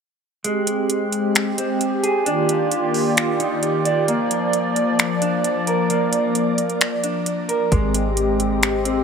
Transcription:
0.44 clean electric guitar G#3, analog synth pad G#3 C4 G4, closed hi-hat
0.67 closed hi-hat
0.90 closed hi-hat
1.12 closed hi-hat
1.35 finger snap, closed hi-hat
1.58 clean electric guitar C4, closed hi-hat
1.81 closed hi-hat
2.03 clean electric guitar G#4, closed hi-hat
2.26 analog synth pad D#3 A#3 F4 D5, clean electric guitar D4, closed hi-hat
2.49 closed hi-hat
2.71 closed hi-hat
2.94 open hi-hat
3.17 finger snap, closed hi-hat
3.40 clean electric guitar D#4, closed hi-hat
3.63 closed hi-hat
3.85 clean electric guitar D5, closed hi-hat
4.08 analog synth pad F3 A#3, clean electric guitar A#3, closed hi-hat
4.31 closed hi-hat
4.53 closed hi-hat
4.76 closed hi-hat
4.99 finger snap, closed hi-hat
5.22 clean electric guitar D4, closed hi-hat
5.44 closed hi-hat
5.67 clean electric guitar A#4, closed hi-hat
5.90 clean electric guitar A#3, closed hi-hat
6.13 closed hi-hat
6.35 closed hi-hat
6.58 closed hi-hat, open hi-hat
6.70 closed hi-hat
6.81 finger snap, closed hi-hat
7.03 clean electric guitar D4, closed hi-hat
7.26 closed hi-hat
7.49 clean electric guitar A#4, closed hi-hat
7.72 808-style bass G#1, clean electric guitar G#3, analog synth pad G#3 C4 G4, kick, closed hi-hat
7.94 closed hi-hat
8.17 closed hi-hat
8.40 closed hi-hat
8.63 finger snap, closed hi-hat
8.85 clean electric guitar C4, closed hi-hat

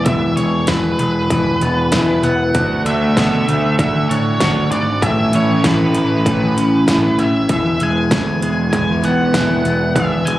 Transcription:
Already playing: overdriven electric guitar E3 G#3 B3 E4 G#4, clean electric guitar B3 E4
0.05 picked electric bass E1, clean electric guitar E3, lead electric guitar E5, kick, closed hi-hat
0.37 picked electric bass E1, clean electric guitar G#3, lead electric guitar C#5, closed hi-hat
0.67 picked electric bass E1, clean electric guitar E3, lead electric guitar B4, kick, snare, closed hi-hat
0.99 picked electric bass E1, clean electric guitar G#3, lead electric guitar B4, closed hi-hat
1.30 picked electric bass E1, clean electric guitar E3, kick, closed hi-hat
1.61 picked electric bass E1, clean electric guitar B3, closed hi-hat
1.92 picked electric bass E1, clean electric guitar E4, kick, snare, closed hi-hat
2.23 picked electric bass E1, clean electric guitar B3, lead electric guitar F#5, closed hi-hat
2.55 picked electric bass D2, clean electric guitar D3, overdriven electric guitar D3 A3 D4 F#4, kick, closed hi-hat
2.85 picked electric bass D2, clean electric guitar A3, lead electric guitar E5, closed hi-hat
3.17 picked electric bass B2, clean electric guitar D3, kick, snare, closed hi-hat
3.48 picked electric bass D2, clean electric guitar A3, closed hi-hat
3.79 clean electric guitar D3, picked electric bass D3, lead electric guitar E5, kick, closed hi-hat
4.09 picked electric bass A2, clean electric guitar D4, lead electric guitar C#5, closed hi-hat
4.40 picked electric bass D2, clean electric guitar F#4, kick, snare, closed hi-hat
4.70 picked electric bass G#1, clean electric guitar D4, lead electric guitar D5, closed hi-hat
5.01 picked electric bass A1, overdriven electric guitar A2 E3 A3 C#4 E4, clean electric guitar A2, lead electric guitar E5, kick, closed hi-hat
5.32 picked electric bass A1, clean electric guitar E3, lead electric guitar C#5, closed hi-hat
5.64 picked electric bass A1, clean electric guitar E3, lead electric guitar B4, kick, snare, closed hi-hat
5.93 picked electric bass A1, clean electric guitar A3, closed hi-hat
5.98 lead electric guitar B4
6.26 picked electric bass A1, clean electric guitar E3, kick, closed hi-hat
6.55 picked electric bass A1, clean electric guitar C#4, closed hi-hat
6.88 picked electric bass A1, clean electric guitar E4, kick, snare, closed hi-hat
7.18 picked electric bass A1, clean electric guitar C#4, lead electric guitar E5, closed hi-hat
7.49 picked electric bass E1, overdriven electric guitar E3 G#3 B3 E4, clean electric guitar E3, kick, closed hi-hat
7.79 picked electric bass E1, clean electric guitar G#3, lead electric guitar G#5, closed hi-hat
8.11 picked electric bass D2, clean electric guitar E3, kick, snare, closed hi-hat
8.42 picked electric bass E1, clean electric guitar G#3, closed hi-hat
8.73 picked electric bass E2, clean electric guitar E3, lead electric guitar G#5, kick, closed hi-hat
9.02 picked electric bass B1, clean electric guitar B3, lead electric guitar F#5, closed hi-hat
9.34 picked electric bass E1, clean electric guitar E4, kick, snare, closed hi-hat
9.64 picked electric bass E1, clean electric guitar B3, closed hi-hat
9.96 picked electric bass E1, clean electric guitar E3, lead electric guitar E5, kick, closed hi-hat
10.25 picked electric bass E1, clean electric guitar G#3, lead electric guitar G#5, closed hi-hat

